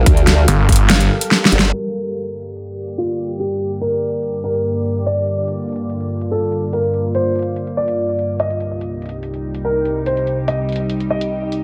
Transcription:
Already playing: ambient pad G3 G4 A4 A#4 F5
0.06 wobble bass D2, kick, closed hi-hat
0.17 closed hi-hat
0.27 snare, closed hi-hat
0.48 detuned saw bass G1, closed hi-hat
0.69 kick, closed hi-hat
0.72 closed hi-hat
0.76 closed hi-hat
0.90 snare, closed hi-hat
1.00 closed hi-hat
1.21 closed hi-hat
1.31 snare
1.45 snare
1.52 wobble bass G1, closed hi-hat
1.59 snare
1.73 ambient pad G2 D3 A#3 G4 D5, grand piano A#4, closed hi-hat
2.15 closed hi-hat
2.35 closed hi-hat
2.39 closed hi-hat
2.42 closed hi-hat
2.56 closed hi-hat
2.67 closed hi-hat
2.88 closed hi-hat
2.98 grand piano F4
3.19 closed hi-hat
3.40 grand piano G4, closed hi-hat
3.50 closed hi-hat
3.60 closed hi-hat
3.81 grand piano A#4, closed hi-hat
4.02 closed hi-hat
4.06 closed hi-hat
4.09 closed hi-hat
4.23 closed hi-hat
4.34 closed hi-hat
4.44 grand piano A#4
4.55 closed hi-hat
4.85 closed hi-hat
5.06 ambient pad F4, grand piano D5, closed hi-hat
5.17 closed hi-hat
5.27 closed hi-hat
5.48 closed hi-hat
5.69 closed hi-hat
5.72 closed hi-hat
5.76 closed hi-hat
5.90 closed hi-hat
6.00 closed hi-hat
6.21 closed hi-hat
6.31 grand piano A4
6.52 closed hi-hat
6.73 grand piano A#4, closed hi-hat
6.84 closed hi-hat
6.94 closed hi-hat
7.15 grand piano C5, closed hi-hat
7.35 closed hi-hat
7.39 closed hi-hat
7.42 closed hi-hat
7.56 closed hi-hat
7.67 closed hi-hat
7.77 grand piano D5
7.88 closed hi-hat
8.19 closed hi-hat
8.40 ambient pad C2 C3 G3 D#4 G4, grand piano D#5, closed hi-hat
8.50 closed hi-hat
8.60 closed hi-hat
8.81 closed hi-hat
9.02 closed hi-hat
9.06 closed hi-hat
9.09 closed hi-hat
9.23 closed hi-hat
9.34 closed hi-hat
9.55 closed hi-hat
9.65 grand piano A#4
9.85 closed hi-hat
10.06 grand piano C5, closed hi-hat
10.17 closed hi-hat
10.27 closed hi-hat
10.48 grand piano D#5, closed hi-hat
10.69 closed hi-hat
10.72 closed hi-hat
10.76 closed hi-hat
10.90 closed hi-hat
11.00 closed hi-hat
11.10 grand piano D#5
11.21 closed hi-hat
11.52 closed hi-hat

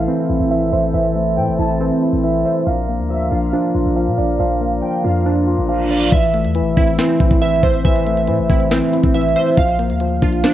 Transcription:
Already playing: tine electric piano E3 A3 C4, pipe organ E3 C4 A4, synth keys E4 E5
0.08 tine electric piano E3, synth keys C4
0.29 808-style bass A1, tine electric piano E4
0.40 808-style bass A1
0.51 tine electric piano E3, synth keys E5
0.73 808-style bass A1, synth keys C5, tine electric piano E5
0.94 808-style bass A1, tine electric piano E3, synth keys E5
1.16 tine electric piano A3
1.37 808-style bass A2, tine electric piano E3, violin section G5
1.48 808-style bass A1
1.58 808-style bass A1, tine electric piano C4, synth keys E4, violin section A5
1.81 tine electric piano E3, synth keys C4
2.02 tine electric piano E4
2.13 808-style bass A1
2.24 tine electric piano E3, synth keys E5
2.45 synth keys C5, tine electric piano E5
2.67 808-style bass A#1, tine electric piano F3, pipe organ F3 D4 A#4, synth keys F5
2.88 tine electric piano A#3
2.99 808-style bass D2
3.10 tine electric piano F3, violin section E5
3.32 808-style bass A#1, tine electric piano D4, synth keys F4, violin section F5
3.53 tine electric piano F3, synth keys D4
3.75 808-style bass A#1, tine electric piano F4
3.86 808-style bass A#1
3.96 tine electric piano F3, synth keys F5
4.07 808-style bass A#2
4.18 808-style bass A#1, synth keys D5, tine electric piano F5
4.39 808-style bass A#1, tine electric piano F3, synth keys F5
4.61 tine electric piano A#3
4.82 tine electric piano F3, violin section G5
5.04 808-style bass F2, tine electric piano D4, synth keys F4, violin section F5
5.26 tine electric piano F3, synth keys D4, reverse cymbal
5.47 tine electric piano F4
5.58 808-style bass A1
5.69 tine electric piano F3, synth keys F5
5.91 synth keys D5, tine electric piano F5
6.12 808-style bass A1, tine electric piano E3, synth keys E5, kick, closed hi-hat
6.23 closed hi-hat
6.34 tine electric piano A3, closed hi-hat
6.45 808-style bass E2, closed hi-hat
6.55 tine electric piano E3, closed hi-hat
6.61 808-style bass A1
6.77 808-style bass A1, tine electric piano C4, synth keys E4, kick, closed hi-hat
6.87 closed hi-hat
6.99 tine electric piano E3, synth keys C4, snare, closed hi-hat
7.20 808-style bass A1, tine electric piano E4, kick, closed hi-hat
7.31 808-style bass A1, kick, closed hi-hat
7.42 tine electric piano E3, synth keys E5, closed hi-hat
7.49 closed hi-hat
7.56 closed hi-hat
7.63 808-style bass A1, synth keys C5, tine electric piano E5, kick, closed hi-hat
7.74 closed hi-hat
7.85 808-style bass A1, tine electric piano E3, synth keys E5, kick, closed hi-hat
7.96 closed hi-hat
8.06 tine electric piano A3, closed hi-hat
8.17 closed hi-hat
8.27 808-style bass A2, tine electric piano E3, closed hi-hat
8.39 808-style bass A1
8.50 808-style bass A1, tine electric piano C4, synth keys E4, kick, open hi-hat
8.60 closed hi-hat
8.71 tine electric piano E3, synth keys C4, snare, closed hi-hat
8.93 tine electric piano E4, closed hi-hat
9.03 808-style bass A1, kick, closed hi-hat
9.14 tine electric piano E3, synth keys E5, closed hi-hat
9.22 closed hi-hat
9.29 closed hi-hat
9.36 synth keys C5, tine electric piano E5, closed hi-hat
9.47 closed hi-hat
9.57 808-style bass A#1, tine electric piano F3, synth keys F5, kick, closed hi-hat
9.68 closed hi-hat
9.79 tine electric piano A#3, closed hi-hat
9.90 808-style bass D2, closed hi-hat
10.00 tine electric piano F3, closed hi-hat
10.22 808-style bass A#1, tine electric piano D4, synth keys F4, kick, closed hi-hat
10.33 closed hi-hat
10.44 tine electric piano F3, synth keys D4, snare, closed hi-hat

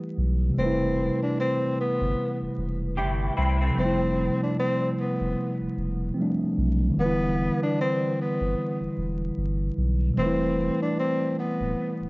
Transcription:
Already playing: tine electric piano E3 G3 A3 E4 B4
0.18 sub bass B1
0.50 tine electric piano C3
0.54 sub bass E1, tine electric piano G3 A3
0.59 tenor saxophone C4, tine electric piano B4
0.66 tine electric piano E4
1.22 tenor saxophone D4
1.40 tenor saxophone C4
1.80 tenor saxophone B3
2.01 sub bass G1
2.42 sub bass E1
2.58 sub bass E1
2.97 sub bass G1, clean electric guitar E4 G4
3.37 sub bass C2, clean electric guitar C4 E4
3.61 clean electric guitar A3 C4
3.70 tine electric piano C3 F3
3.78 sub bass F1, tine electric piano G3, tenor saxophone C4
3.82 tine electric piano A3 E4
4.43 tenor saxophone D4
4.59 tenor saxophone C4
5.00 tenor saxophone B3
5.21 sub bass E1
5.61 sub bass E1
5.77 sub bass E1
6.14 tine electric piano F3 G3 C4
6.20 tine electric piano A3 D4
6.57 sub bass B1
6.90 tine electric piano D3 E3
6.97 sub bass E1, tine electric piano G3, tenor saxophone B3
7.02 tine electric piano E4 B4
7.63 tenor saxophone D4
7.81 tenor saxophone C4
8.21 tenor saxophone B3
8.41 sub bass G1
8.81 sub bass E1
8.97 sub bass E1
9.38 sub bass G1
9.78 sub bass B1
10.10 tine electric piano B2 G3
10.17 sub bass E1, tine electric piano E3 A3, tenor saxophone C4
10.22 tine electric piano B4
10.26 tine electric piano E4
10.82 tenor saxophone D4
10.99 tenor saxophone C4
11.39 tenor saxophone B3
11.60 sub bass D1
12.01 sub bass D1

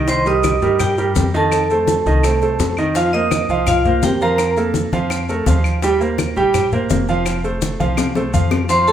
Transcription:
Already playing: upright bass C2
0.08 grand piano D#3 D#4 D#5, vibraphone C5 C6, high bongo, high conga, maracas
0.26 grand piano G3 G4 A#4, vibraphone D#5 D#6, high bongo, high conga, maracas
0.44 high bongo, high conga, claves, maracas
0.62 upright bass G2, grand piano G3 G4 A#4, high conga, maracas
0.79 vibraphone G4 G5, high bongo, high conga, low conga, claves, maracas
0.98 grand piano G3 G4 A#4, high bongo, high conga, maracas
1.16 upright bass F2, high bongo, low bongo, high conga, maracas
1.34 grand piano D#3 D#4 D#5, vibraphone A4 A5, high bongo, maracas
1.52 high bongo, high conga, claves, maracas
1.70 grand piano A3 A4 C5, high bongo, high conga, maracas
1.87 high bongo, high conga, maracas
2.06 upright bass C2, grand piano D#3 D#4 D#5, high conga, maracas
2.23 grand piano A3 A4 C5, high bongo, high conga, claves, maracas
2.42 grand piano A3 A4 C5, high bongo, high conga, maracas
2.59 upright bass F2, high bongo, low bongo, high conga, maracas
2.77 grand piano D#3 D#4 D#5, high conga, claves, maracas
2.95 grand piano F3 F4 F5, vibraphone F4 F5, high bongo, high conga, maracas
3.13 grand piano A#3 A#4 C5, vibraphone D#5 D#6, high bongo, high conga, maracas
3.31 high bongo, high conga, claves, maracas
3.49 upright bass C2, grand piano F3 F4 F5, high bongo, high conga, maracas
3.67 vibraphone F4 F5, high bongo, high conga, low conga, claves, maracas
3.85 grand piano A#3 A#4 C5, high conga, low conga, maracas
4.03 upright bass F2, grand piano A#3 A#4 C5, vibraphone G4 G5, high bongo, low bongo, high conga, maracas
4.21 grand piano F3 F4 F5, vibraphone A#4 A#5, high bongo, high conga, maracas
4.38 high bongo, high conga, claves, maracas
4.56 grand piano A#3 A4 A#4, high bongo, high conga, maracas
4.74 high bongo, high conga, maracas
4.92 upright bass F2, grand piano F3 F4 F5, high bongo, high conga, maracas
5.10 high bongo, high conga, claves, maracas
5.29 grand piano A3 A4 A#4, high conga, maracas
5.46 upright bass D#2, grand piano F3 F4 F5, high bongo, low bongo, high conga, maracas
5.64 high bongo, claves, maracas
5.82 grand piano G3 G4 G5, high bongo, high conga, maracas
6.01 grand piano A#3 A#4 C5, high bongo, high conga, maracas
6.18 high bongo, high conga, claves, maracas
6.36 upright bass A#1, grand piano G3 G4 G5, high bongo, high conga, maracas
6.54 high bongo, high conga, low conga, claves, maracas
6.72 grand piano A#3 A#4 C5, high conga, low conga, maracas
6.90 upright bass F1, grand piano A#3 A#4 C5, high bongo, low bongo, high conga, maracas
7.08 grand piano F3 F4 F5, high bongo, high conga, maracas
7.26 high bongo, high conga, claves, maracas
7.44 grand piano A3 A4 C5, high bongo, high conga, maracas
7.62 high bongo, high conga, maracas
7.80 upright bass C2, grand piano F3 F4 F5, high conga, maracas
7.97 low bongo, high conga, claves, maracas
8.15 grand piano A3 A4 C5, low bongo, high conga, maracas
8.33 upright bass F2, grand piano F3 F4 F5, high conga, maracas
8.51 low bongo, claves, maracas
8.69 grand piano F3 F4 F5, vibraphone C5 C6, high bongo, high conga, maracas
8.87 grand piano A3 A4 C5, vibraphone A4 A5, high bongo, high conga, maracas

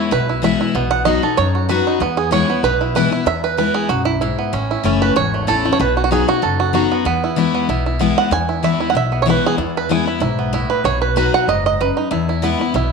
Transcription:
Already playing: steel-string acoustic guitar G#3 B3 E4, five-string banjo E4
0.11 upright bass B1, steel-string acoustic guitar B2, five-string banjo B4
0.29 five-string banjo E4
0.42 steel-string acoustic guitar E3 G#3 B3 E4, five-string banjo E5
0.61 five-string banjo E4
0.74 upright bass B1, steel-string acoustic guitar B2, five-string banjo B3
0.91 five-string banjo F#5
1.05 steel-string acoustic guitar F#3 B3 D#4 F#4, five-string banjo D#5
1.22 steel-string acoustic guitar D#4 F#4, five-string banjo A4
1.37 steel-string acoustic guitar F#2, upright bass F#2, five-string banjo C#5
1.55 five-string banjo F#4
1.69 steel-string acoustic guitar F#3 B3 D#4 F#4, five-string banjo B4
1.87 five-string banjo D#4
2.00 steel-string acoustic guitar E2, upright bass E2, five-string banjo B3
2.17 five-string banjo G#4
2.31 steel-string acoustic guitar E3 G#3 B3 E4, five-string banjo C#5
2.48 five-string banjo B3, steel-string acoustic guitar B3 E4
2.63 upright bass B1, steel-string acoustic guitar B2, five-string banjo B4
2.81 five-string banjo E4
2.95 steel-string acoustic guitar E3 G#3 B3 E4, five-string banjo B4
3.11 steel-string acoustic guitar B3 E4, five-string banjo E4
3.26 upright bass E2, steel-string acoustic guitar E2, five-string banjo E5
3.44 five-string banjo B4
3.57 steel-string acoustic guitar E3 G#3 B3 E4, five-string banjo B4
3.74 five-string banjo G#4
3.89 upright bass B1, steel-string acoustic guitar F#2, five-string banjo F#4
4.05 five-string banjo E4
4.21 steel-string acoustic guitar G#2, five-string banjo E4
4.39 five-string banjo B3
4.53 upright bass A1, steel-string acoustic guitar A2, five-string banjo C#4
4.71 five-string banjo E4
4.83 upright bass F#1, steel-string acoustic guitar E3 A3 C#4 E4, five-string banjo C#4
5.02 five-string banjo B4
5.16 upright bass G#1, steel-string acoustic guitar E2, five-string banjo C#5
5.34 five-string banjo A3
5.47 upright bass A1, steel-string acoustic guitar E3 A3 C#4 E4, five-string banjo A4
5.65 five-string banjo A3, steel-string acoustic guitar C#4 E4
5.73 five-string banjo C#5
5.79 upright bass B1, steel-string acoustic guitar B2, five-string banjo B4
5.97 five-string banjo F#4
6.04 five-string banjo F#4
6.11 steel-string acoustic guitar F#3 B3 D#4 F#4, five-string banjo G#4
6.28 steel-string acoustic guitar D#4 F#4, five-string banjo F#4
6.42 upright bass F#1, steel-string acoustic guitar F#2, five-string banjo A4
6.60 five-string banjo F#4
6.73 steel-string acoustic guitar F#3 B3 D#4 F#4, five-string banjo F#4
6.92 five-string banjo B3
7.05 steel-string acoustic guitar E2, upright bass E2, five-string banjo B3
7.24 five-string banjo E4
7.36 steel-string acoustic guitar E3 G#3 B3 E4, five-string banjo E4
7.55 five-string banjo B3
7.69 upright bass B1, steel-string acoustic guitar B2, five-string banjo E4
7.86 five-string banjo E4
7.99 steel-string acoustic guitar E3 G#3 B3 E4, five-string banjo B3
8.18 five-string banjo F#5
8.31 upright bass E2, steel-string acoustic guitar E2, five-string banjo G#5
8.49 five-string banjo E4
8.63 steel-string acoustic guitar E3 G#3 B3 E4, five-string banjo E5
8.80 five-string banjo E4
8.90 upright bass B1, five-string banjo F#5
8.95 steel-string acoustic guitar B2, five-string banjo E5
9.12 five-string banjo B3
9.22 steel-string acoustic guitar E3, five-string banjo C#5
9.27 steel-string acoustic guitar G#3 B3 E4, five-string banjo B4
9.46 five-string banjo G#4
9.58 upright bass E2, steel-string acoustic guitar E2, five-string banjo E4
9.77 five-string banjo B4
9.89 steel-string acoustic guitar E3 G#3 B3 E4, five-string banjo G#4
10.06 steel-string acoustic guitar B3 E4, five-string banjo E4
10.20 upright bass B1, steel-string acoustic guitar G#2, five-string banjo E4
10.39 five-string banjo B3
10.53 steel-string acoustic guitar A2, five-string banjo E4
10.70 five-string banjo B4
10.84 upright bass B1, steel-string acoustic guitar B2, five-string banjo C#5
11.02 five-string banjo B4
11.16 steel-string acoustic guitar F#3 B3 D#4 F#4, five-string banjo B4
11.34 five-string banjo F#5
11.48 upright bass F#1, steel-string acoustic guitar G#2, five-string banjo D#5
11.66 five-string banjo D#5
11.81 steel-string acoustic guitar F#2, five-string banjo B4
11.97 five-string banjo D#4
12.11 steel-string acoustic guitar E2, upright bass E2, five-string banjo E4
12.29 five-string banjo E4
12.42 steel-string acoustic guitar E3 G#3 B3 E4, five-string banjo B3
12.59 steel-string acoustic guitar B3 E4, five-string banjo E4
12.74 upright bass B1, steel-string acoustic guitar B2, five-string banjo E4

